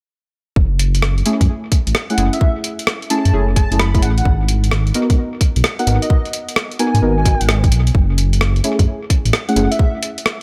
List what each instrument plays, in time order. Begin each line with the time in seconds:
0.56 detuned saw bass F#1, kick
0.79 closed hi-hat
0.95 closed hi-hat
1.02 cross-stick
1.18 closed hi-hat
1.25 synth stab A3 C#4 E4 G#4, closed hi-hat
1.41 detuned saw bass F#2, kick, closed hi-hat
1.72 kick, closed hi-hat
1.87 detuned saw bass A1, closed hi-hat
1.95 cross-stick
2.10 synth stab A3 C#4 E4 G#4, digital synth lead F#5, closed hi-hat
2.18 detuned saw bass F#1, synth stab A3 C#4 E4 G#4, closed hi-hat
2.33 digital synth lead E5, closed hi-hat
2.41 digital synth lead E5, kick
2.64 closed hi-hat
2.79 closed hi-hat
2.87 cross-stick
3.02 closed hi-hat
3.10 synth stab A3 C#4 E4 G#4, digital synth lead A5, closed hi-hat
3.25 detuned saw bass F#2, closed hi-hat
3.33 detuned saw bass F#1, synth stab A3 C#4 E4 G#4
3.56 digital synth lead A5, kick, closed hi-hat
3.71 detuned saw bass F#1, synth stab A3 C#4 E4 G#4, closed hi-hat
3.79 digital synth lead B5, cross-stick
3.95 synth stab A3 C#4 E4 G#4, digital synth lead B5, kick, closed hi-hat
4.02 detuned saw bass A1, digital synth lead F#5, closed hi-hat
4.18 digital synth lead F#5, closed hi-hat
4.25 detuned saw bass G#1, kick
4.48 closed hi-hat
4.64 closed hi-hat
4.71 cross-stick
4.87 closed hi-hat
4.94 synth stab B3 D#4 F#4 A#4, closed hi-hat
5.10 detuned saw bass G#2, kick, closed hi-hat
5.41 kick, closed hi-hat
5.56 detuned saw bass B1, closed hi-hat
5.64 cross-stick
5.79 synth stab B3 D#4 F#4 A#4, digital synth lead F#5, closed hi-hat
5.87 detuned saw bass G#1, synth stab B3 D#4 F#4 A#4, closed hi-hat
6.02 digital synth lead D#5, closed hi-hat
6.10 digital synth lead D#5, kick
6.25 closed hi-hat
6.33 closed hi-hat
6.49 closed hi-hat
6.56 cross-stick
6.72 closed hi-hat
6.79 synth stab B3 D#4 F#4 A#4, digital synth lead G#5, closed hi-hat
6.94 detuned saw bass G#2, closed hi-hat
7.02 detuned saw bass G#1, synth stab B3 D#4 F#4 A#4
7.18 digital synth lead G#5
7.25 synth stab B3 D#4 F#4 A#4, kick, closed hi-hat
7.41 detuned saw bass G#1, closed hi-hat
7.49 cross-stick
7.64 kick, closed hi-hat
7.71 detuned saw bass B1, closed hi-hat
7.87 closed hi-hat
7.95 detuned saw bass F#1, kick
8.18 closed hi-hat
8.33 closed hi-hat
8.41 cross-stick
8.56 closed hi-hat
8.64 synth stab A3 C#4 E4 G#4, closed hi-hat
8.79 detuned saw bass F#2, kick, closed hi-hat
9.10 kick, closed hi-hat
9.25 detuned saw bass A1, closed hi-hat
9.33 cross-stick
9.48 synth stab A3 C#4 E4 G#4, digital synth lead F#5, closed hi-hat
9.56 detuned saw bass F#1, synth stab A3 C#4 E4 G#4, closed hi-hat
9.71 digital synth lead E5, closed hi-hat
9.79 digital synth lead E5, kick
10.03 closed hi-hat
10.18 closed hi-hat
10.26 cross-stick